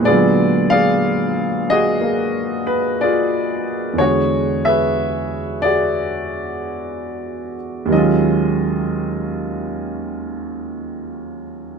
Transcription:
0, 0, Header, 1, 2, 480
1, 0, Start_track
1, 0, Key_signature, -6, "minor"
1, 0, Tempo, 985222
1, 15, Time_signature, 4, 2, 24, 8
1, 5744, End_track
2, 0, Start_track
2, 0, Title_t, "Grand piano"
2, 0, Program_c, 0, 0
2, 0, Control_c, 0, 64, 127
2, 0, Note_on_c, 0, 46, 56
2, 15, Note_on_c, 0, 56, 51
2, 22, Control_c, 0, 64, 0
2, 25, Note_on_c, 0, 74, 80
2, 26, Note_on_c, 0, 59, 52
2, 34, Note_on_c, 0, 68, 60
2, 36, Note_on_c, 0, 65, 56
2, 42, Note_on_c, 0, 50, 51
2, 55, Note_on_c, 0, 54, 56
2, 114, Control_c, 0, 64, 127
2, 341, Note_on_c, 0, 77, 93
2, 342, Note_off_c, 0, 68, 0
2, 342, Note_off_c, 0, 74, 0
2, 349, Note_on_c, 0, 68, 59
2, 349, Note_on_c, 0, 74, 65
2, 827, Note_off_c, 0, 68, 0
2, 828, Note_on_c, 0, 75, 86
2, 832, Note_off_c, 0, 77, 0
2, 834, Note_on_c, 0, 66, 60
2, 834, Note_on_c, 0, 68, 63
2, 966, Note_off_c, 0, 65, 0
2, 980, Note_on_c, 0, 58, 39
2, 985, Note_off_c, 0, 68, 0
2, 991, Note_on_c, 0, 77, 34
2, 993, Note_on_c, 0, 68, 43
2, 1283, Note_off_c, 0, 74, 0
2, 1299, Note_on_c, 0, 71, 69
2, 1316, Note_off_c, 0, 75, 0
2, 1447, Note_off_c, 0, 71, 0
2, 1466, Note_on_c, 0, 74, 71
2, 1469, Note_off_c, 0, 68, 0
2, 1475, Note_on_c, 0, 65, 50
2, 1477, Note_on_c, 0, 68, 52
2, 1765, Note_off_c, 0, 66, 0
2, 1841, Note_off_c, 0, 74, 0
2, 1917, Note_on_c, 0, 40, 43
2, 1925, Note_off_c, 0, 65, 0
2, 1927, Note_off_c, 0, 46, 0
2, 1927, Note_off_c, 0, 50, 0
2, 1927, Note_off_c, 0, 68, 0
2, 1935, Note_off_c, 0, 56, 0
2, 1935, Note_on_c, 0, 50, 39
2, 1938, Note_off_c, 0, 58, 0
2, 1941, Note_off_c, 0, 59, 0
2, 1941, Control_c, 0, 64, 0
2, 1941, Note_on_c, 0, 73, 80
2, 1943, Note_off_c, 0, 77, 0
2, 1948, Note_on_c, 0, 66, 60
2, 1951, Note_on_c, 0, 68, 52
2, 1953, Note_on_c, 0, 56, 37
2, 1955, Note_off_c, 0, 54, 0
2, 1962, Note_off_c, 0, 66, 0
2, 1969, Note_on_c, 0, 66, 49
2, 2035, Control_c, 0, 64, 127
2, 2265, Note_on_c, 0, 76, 74
2, 2267, Note_off_c, 0, 73, 0
2, 2269, Note_off_c, 0, 68, 0
2, 2272, Note_on_c, 0, 71, 54
2, 2276, Note_on_c, 0, 68, 52
2, 2738, Note_on_c, 0, 74, 82
2, 2741, Note_off_c, 0, 66, 0
2, 2741, Note_off_c, 0, 68, 0
2, 2748, Note_on_c, 0, 68, 52
2, 2749, Note_on_c, 0, 66, 51
2, 2754, Note_off_c, 0, 76, 0
2, 3204, Note_off_c, 0, 71, 0
2, 3676, Note_off_c, 0, 74, 0
2, 3681, Note_off_c, 0, 68, 0
2, 3682, Note_off_c, 0, 66, 0
2, 3827, Note_on_c, 0, 39, 57
2, 3841, Note_on_c, 0, 51, 55
2, 3845, Note_off_c, 0, 40, 0
2, 3851, Note_on_c, 0, 54, 53
2, 3854, Note_off_c, 0, 50, 0
2, 3855, Note_off_c, 0, 56, 0
2, 3860, Note_on_c, 0, 75, 63
2, 3861, Control_c, 0, 64, 0
2, 3862, Note_on_c, 0, 56, 51
2, 3872, Note_on_c, 0, 61, 53
2, 3887, Note_on_c, 0, 65, 59
2, 3936, Control_c, 0, 64, 127
2, 5744, Note_off_c, 0, 39, 0
2, 5744, Note_off_c, 0, 51, 0
2, 5744, Note_off_c, 0, 54, 0
2, 5744, Note_off_c, 0, 56, 0
2, 5744, Note_off_c, 0, 61, 0
2, 5744, Note_off_c, 0, 65, 0
2, 5744, Note_off_c, 0, 75, 0
2, 5744, End_track
0, 0, End_of_file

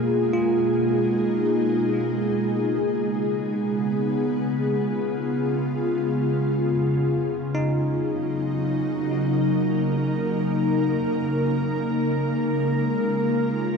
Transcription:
0, 0, Header, 1, 3, 480
1, 0, Start_track
1, 0, Tempo, 500000
1, 13219, End_track
2, 0, Start_track
2, 0, Title_t, "Tine electric piano"
2, 0, Program_c, 0, 4
2, 0, Control_c, 0, 64, 127
2, 321, Note_on_c, 0, 65, 44
2, 2203, Control_c, 0, 64, 0
2, 2664, Note_off_c, 0, 65, 0
2, 6450, Control_c, 0, 64, 127
2, 7245, Note_on_c, 0, 63, 60
2, 10257, Control_c, 0, 64, 0
2, 10444, Control_c, 0, 64, 127
2, 10516, Note_off_c, 0, 63, 0
2, 13219, End_track
3, 0, Start_track
3, 0, Title_t, "Ambient pad"
3, 0, Program_c, 1, 92
3, 0, Note_on_c, 1, 47, 67
3, 0, Note_on_c, 1, 56, 59
3, 0, Note_on_c, 1, 58, 68
3, 0, Note_on_c, 1, 63, 60
3, 0, Note_on_c, 1, 68, 61
3, 2184, Note_off_c, 1, 58, 0
3, 2190, Note_on_c, 1, 49, 61
3, 2198, Note_off_c, 1, 47, 0
3, 2465, Note_on_c, 1, 59, 80
3, 3829, Note_off_c, 1, 63, 0
3, 4044, Note_on_c, 1, 65, 79
3, 6246, Note_off_c, 1, 56, 0
3, 6257, Note_off_c, 1, 59, 0
3, 6922, Note_on_c, 1, 63, 71
3, 7303, Note_on_c, 1, 54, 69
3, 7843, Note_off_c, 1, 68, 0
3, 7861, Note_off_c, 1, 65, 0
3, 8052, Note_on_c, 1, 58, 72
3, 8054, Note_on_c, 1, 70, 82
3, 10252, Note_off_c, 1, 54, 0
3, 11145, Note_on_c, 1, 56, 86
3, 11840, Note_off_c, 1, 63, 0
3, 12029, Note_on_c, 1, 65, 77
3, 13219, Note_off_c, 1, 49, 0
3, 13219, Note_off_c, 1, 56, 0
3, 13219, Note_off_c, 1, 58, 0
3, 13219, Note_off_c, 1, 65, 0
3, 13219, Note_off_c, 1, 70, 0
3, 13219, End_track
0, 0, End_of_file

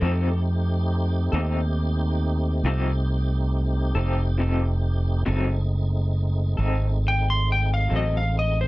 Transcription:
0, 0, Header, 1, 5, 480
1, 0, Start_track
1, 0, Tempo, 876168
1, 11, Time_signature, 12, 3, 24, 8
1, 4753, End_track
2, 0, Start_track
2, 0, Title_t, "Electric slide guitar"
2, 0, Program_c, 0, 29
2, 0, Note_on_c, 0, 69, 87
2, 234, Note_off_c, 0, 69, 0
2, 3879, Note_on_c, 0, 79, 95
2, 3983, Note_off_c, 0, 79, 0
2, 3999, Note_on_c, 0, 84, 78
2, 4103, Note_off_c, 0, 84, 0
2, 4120, Note_on_c, 0, 79, 88
2, 4223, Note_off_c, 0, 79, 0
2, 4238, Note_on_c, 0, 77, 77
2, 4342, Note_off_c, 0, 77, 0
2, 4360, Note_on_c, 0, 75, 83
2, 4463, Note_off_c, 0, 75, 0
2, 4476, Note_on_c, 0, 77, 81
2, 4581, Note_off_c, 0, 77, 0
2, 4596, Note_on_c, 0, 75, 89
2, 4701, Note_off_c, 0, 75, 0
2, 4717, Note_on_c, 0, 72, 81
2, 4753, Note_off_c, 0, 72, 0
2, 4753, End_track
3, 0, Start_track
3, 0, Title_t, "Clean electric guitar"
3, 0, Program_c, 1, 27
3, 5, Note_on_c, 1, 53, 79
3, 6, Note_on_c, 1, 60, 84
3, 13, Note_on_c, 1, 63, 92
3, 13, Note_on_c, 1, 69, 85
3, 152, Note_off_c, 1, 53, 0
3, 152, Note_off_c, 1, 60, 0
3, 156, Note_off_c, 1, 63, 0
3, 156, Note_off_c, 1, 69, 0
3, 723, Note_on_c, 1, 69, 51
3, 733, Note_on_c, 1, 63, 51
3, 736, Note_on_c, 1, 60, 42
3, 871, Note_off_c, 1, 69, 0
3, 876, Note_off_c, 1, 63, 0
3, 878, Note_off_c, 1, 60, 0
3, 1451, Note_on_c, 1, 53, 84
3, 1456, Note_on_c, 1, 60, 92
3, 1457, Note_on_c, 1, 63, 86
3, 1461, Note_on_c, 1, 69, 90
3, 1595, Note_off_c, 1, 53, 0
3, 1598, Note_off_c, 1, 60, 0
3, 1598, Note_off_c, 1, 63, 0
3, 1600, Note_off_c, 1, 69, 0
3, 2164, Note_on_c, 1, 69, 57
3, 2172, Note_on_c, 1, 63, 57
3, 2175, Note_on_c, 1, 60, 47
3, 2312, Note_off_c, 1, 69, 0
3, 2316, Note_off_c, 1, 63, 0
3, 2317, Note_off_c, 1, 60, 0
3, 2399, Note_on_c, 1, 53, 62
3, 2407, Note_on_c, 1, 60, 67
3, 2411, Note_on_c, 1, 63, 67
3, 2415, Note_on_c, 1, 69, 69
3, 2549, Note_off_c, 1, 53, 0
3, 2553, Note_off_c, 1, 60, 0
3, 2555, Note_off_c, 1, 63, 0
3, 2557, Note_off_c, 1, 69, 0
3, 2880, Note_on_c, 1, 54, 79
3, 2882, Note_on_c, 1, 60, 83
3, 2887, Note_on_c, 1, 63, 96
3, 2889, Note_on_c, 1, 69, 92
3, 3030, Note_off_c, 1, 54, 0
3, 3031, Note_off_c, 1, 60, 0
3, 3033, Note_off_c, 1, 63, 0
3, 3035, Note_off_c, 1, 69, 0
3, 3601, Note_on_c, 1, 69, 54
3, 3609, Note_on_c, 1, 63, 49
3, 3615, Note_on_c, 1, 60, 46
3, 3750, Note_off_c, 1, 69, 0
3, 3755, Note_off_c, 1, 63, 0
3, 3758, Note_off_c, 1, 60, 0
3, 4319, Note_on_c, 1, 54, 71
3, 4325, Note_on_c, 1, 60, 79
3, 4328, Note_on_c, 1, 63, 79
3, 4329, Note_on_c, 1, 69, 80
3, 4470, Note_off_c, 1, 54, 0
3, 4473, Note_off_c, 1, 60, 0
3, 4474, Note_off_c, 1, 63, 0
3, 4475, Note_off_c, 1, 69, 0
3, 4753, End_track
4, 0, Start_track
4, 0, Title_t, "Tonewheel organ"
4, 0, Program_c, 2, 16
4, 7, Note_on_c, 2, 57, 63
4, 7, Note_on_c, 2, 67, 64
4, 9, Note_on_c, 2, 63, 65
4, 13, Note_on_c, 2, 60, 61
4, 2868, Note_off_c, 2, 57, 0
4, 2868, Note_off_c, 2, 67, 0
4, 2869, Note_off_c, 2, 63, 0
4, 2871, Note_off_c, 2, 60, 0
4, 2879, Note_on_c, 2, 63, 66
4, 2881, Note_on_c, 2, 56, 63
4, 2881, Note_on_c, 2, 60, 65
4, 2882, Note_on_c, 2, 57, 69
4, 4753, Note_off_c, 2, 56, 0
4, 4753, Note_off_c, 2, 57, 0
4, 4753, Note_off_c, 2, 60, 0
4, 4753, Note_off_c, 2, 63, 0
4, 4753, End_track
5, 0, Start_track
5, 0, Title_t, "Fingered electric bass"
5, 0, Program_c, 3, 33
5, 11, Note_on_c, 3, 41, 77
5, 709, Note_off_c, 3, 41, 0
5, 729, Note_on_c, 3, 39, 92
5, 1428, Note_off_c, 3, 39, 0
5, 1444, Note_on_c, 3, 36, 78
5, 2146, Note_off_c, 3, 36, 0
5, 2165, Note_on_c, 3, 29, 86
5, 2867, Note_off_c, 3, 29, 0
5, 2890, Note_on_c, 3, 30, 82
5, 3590, Note_off_c, 3, 30, 0
5, 3608, Note_on_c, 3, 32, 88
5, 4309, Note_off_c, 3, 32, 0
5, 4336, Note_on_c, 3, 33, 80
5, 4753, Note_off_c, 3, 33, 0
5, 4753, End_track
0, 0, End_of_file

